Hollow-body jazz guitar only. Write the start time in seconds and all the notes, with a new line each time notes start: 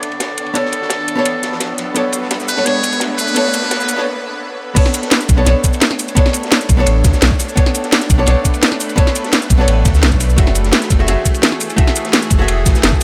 Already playing: B3 D4 A4 D5
0.54 B3 D4 A4 C#5
1.15 B3 D4 A4 C#5
1.94 B3 D4 A4 C#5
2.57 B3 D4 A4 C#5
2.64 B3 D4 A4 C#5
3.34 B3 D4 A4 C#5
3.96 B3 D4 A4 C#5
4.75 B3 D4 A4 C#5
5.37 B3 D4 A4 C#5
5.45 B3 D4 A4 C#5
6.15 B3 D4 A4 C#5
6.77 B3 D4 A4 C#5
7.56 B3 D4 A4 C#5
8.18 B3 D4 A4 C#5
8.26 B3 D4 A4 C#5
8.96 B3 D4 A4 C#5
9.58 B3 D4 A4 C#5
10.36 A3 F#4 G#4 E5
10.99 A3 F#4 G#4 E5
11.07 A3 F#4 G#4 E5
11.76 A3 F#4 G#4 E5
12.38 A3 F#4 G#4 E5